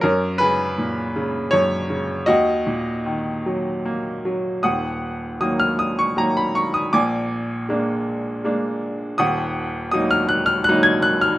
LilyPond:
<<
  \new Staff \with { instrumentName = "Upright piano" } { \time 3/4 \key ees \minor \tempo 4 = 79 << { bes'8 ces''4. des''4 | ees''2 r4 | ees'''4 ees'''16 f'''16 ees'''16 des'''16 bes''16 ces'''16 des'''16 ees'''16 | d'''2~ d'''8 r8 |
ees'''4 ees'''16 f'''16 ges'''16 f'''16 ges'''16 aes'''16 ges'''16 f'''16 | } \\ { des'8 aes'4. r4 | ges'2 r4 | ges''4. r4. | aes''2~ aes''8 r8 |
ges''4. r4. | } >> }
  \new Staff \with { instrumentName = "Upright piano" } { \clef bass \time 3/4 \key ees \minor ges,8 des8 bes,8 des8 ges,8 des8 | ees,8 bes,8 ees8 ges8 bes8 ges8 | <ees,, ees,>4 <ees ges bes>4 <ees ges bes>4 | <bes,, bes,>4 <aes bes d'>4 <aes bes d'>4 |
<ees,, ees,>4 <ges bes ees'>4 <ges bes ees'>4 | }
>>